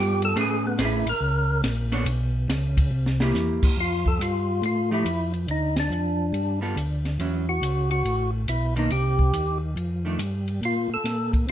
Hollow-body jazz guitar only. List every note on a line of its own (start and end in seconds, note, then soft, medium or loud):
0.00 0.34 G3 medium
0.00 0.34 B3 medium
0.00 0.34 F4 medium
0.00 0.35 A4 medium
0.36 0.77 A3 medium
0.36 0.78 C#4 medium
0.36 0.78 G#4 medium
0.36 0.78 B4 medium
0.78 1.04 A3 medium
0.78 1.04 C#4 medium
0.78 1.04 G#4 medium
0.78 1.05 B4 medium
1.92 2.05 B3 medium
1.92 2.06 D4 medium
1.92 2.06 A4 medium
1.92 2.06 C#5 medium
3.21 3.75 A#3 medium
3.21 3.75 E4 medium
3.21 3.76 G4 medium
4.91 5.04 F3 medium
4.91 5.05 A3 medium
4.91 5.05 E4 medium
4.91 5.05 G4 medium
6.61 6.75 G3 medium
6.61 6.75 B3 medium
6.61 6.75 F4 medium
6.61 6.76 A4 medium
7.20 7.45 F#3 medium
7.20 7.45 C#4 medium
7.20 7.45 E4 medium
8.76 8.89 D#3 medium
8.76 8.89 A#3 medium
8.76 8.90 D4 medium
10.05 10.18 D#3 medium
10.05 10.18 A3 medium
10.05 10.19 D4 medium